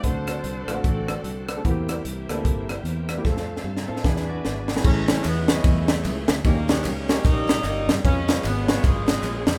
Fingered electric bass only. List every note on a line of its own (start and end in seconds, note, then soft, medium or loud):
0.04 0.38 D2 medium
0.44 0.64 C2 medium
0.68 0.81 A#1 medium
0.84 1.18 A1 medium
1.24 1.58 C2 medium
1.65 1.99 E2 loud
2.05 2.25 C2 medium
2.29 2.42 D2 medium
2.45 2.79 G1 medium
2.84 3.18 E2 medium
3.25 3.59 F2 loud
3.64 3.85 G2 medium
3.89 4.03 A2 medium
4.05 4.39 E2 medium
4.45 4.79 G#1 medium
4.85 5.19 A1 loud
5.25 5.59 E2 loud
5.64 6.06 E2 loud
6.05 6.25 C#2 loud
6.29 6.42 D2 loud
6.45 6.86 D#2 loud
6.85 7.19 C#2 loud
7.25 7.58 A#1 medium
7.64 7.89 G1 loud
7.87 8.01 G2 medium
8.04 8.38 F2 loud
8.44 8.78 G#1 loud
8.84 9.17 G#1 medium
9.23 9.43 A#1 loud
9.46 9.58 F2 medium